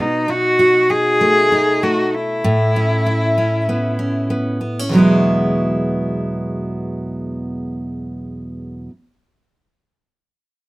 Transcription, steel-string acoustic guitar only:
Already playing: B2 B3
0.28 D#4
0.59 F#4
0.90 D#4
1.21 A3
1.52 D#4
1.83 A3
2.44 A2
2.76 C#4
3.06 E4
3.38 C#4
3.69 B3
3.99 C#4
4.30 B3
4.61 B3
4.79 C#4
4.89 E2 B2 F#3
4.95 G#3 B3 E4

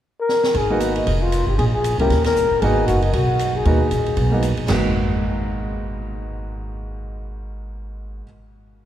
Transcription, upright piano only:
0.70 A#3 B3 D#4 F#4
2.00 A#3 C#4 E4 G4
2.62 A#3 B3 D#4 F#4
3.66 A#3 B3 D#4 F#4
4.32 A#3 B3 D#4 F#4
4.68 G#2 G#3 A#3 B3 F#4

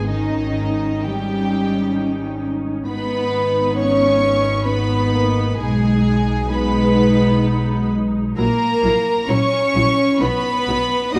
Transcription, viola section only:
0.07 C#4 D#4
1.03 C#4 D#4
2.87 B3 D#4
4.67 B3 D#4
5.13 A#3
5.59 G#3 D#4
6.52 G#3 D#4
8.36 F#3 E4
8.82 F#3 E4
9.28 F#3 E4
9.75 F#3 E4
10.20 F#3 D#4
10.68 F#3 D#4
11.15 A#3 F#4

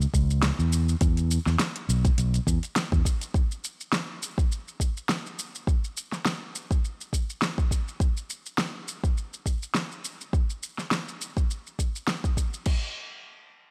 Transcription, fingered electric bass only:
0.14 C#2
0.59 E2
1.01 E2
1.46 E2
1.89 B1
2.18 B1
2.47 E2
2.92 E2

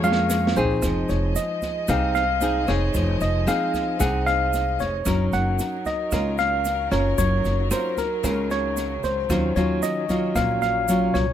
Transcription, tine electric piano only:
0.04 F5
0.57 C5
1.09 C#5
1.36 D#5
1.90 F5
2.15 F5
2.68 C#5
3.22 D#5
3.48 F5
4.00 F#5
4.27 F5
4.80 C#5
5.33 F#5
5.86 D#5
6.39 F5
6.92 C#5
7.18 C#5
7.71 C5
7.98 A#4
8.51 C#5
9.04 C5
9.56 C#5
9.83 D#5
10.36 F5
10.62 F5
11.14 C#5

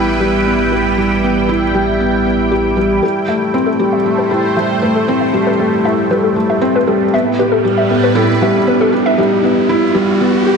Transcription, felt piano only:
Already playing: G3 B3 E4 G4
0.20 G3
0.46 B3
0.72 G4
0.98 G3
1.24 B3
1.49 E4
1.75 G3
2.00 B3
2.26 B3
2.52 G4
2.77 G3
3.03 G3
3.28 A3
3.54 C4
3.80 G3
4.06 A3
4.31 E4
4.57 G3
4.83 A3
5.08 C4
5.34 G3
5.59 A3
5.85 E4
6.10 G3
6.36 A3
6.61 C4
6.87 G3
7.14 B3
7.39 G4
7.65 G3
7.90 B3
8.15 E4
8.41 G3
8.67 B3
8.92 G4
9.18 G3
9.44 B3
9.69 E4
9.95 G3
10.21 B3
10.47 G4

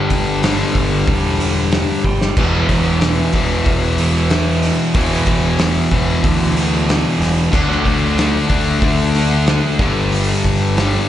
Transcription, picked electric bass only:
0.11 G1
0.75 G1
1.08 E1
2.04 G1
2.37 E1
2.69 E1
3.34 E1
3.66 E1
4.95 E1
5.27 E1
5.92 E1
6.24 D2
7.20 E1
7.53 D2
7.86 D2
8.50 D2
8.81 D2
9.79 G1
10.45 G1

